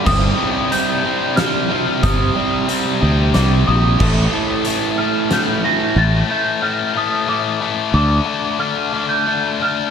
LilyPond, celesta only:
\new Staff \with { instrumentName = "Celesta" } { \time 3/4 \key c \dorian \tempo 4 = 92 ees'''4 g'''4 f'''4 | ees'''2 d'''8 ees'''8~ | ees'''4. f'''8 g'''8 bes'''8 | a'''8 g'''8 f'''8 ees'''8 d'''8. r16 |
d'''4 f'''8. g'''8. f'''8 | }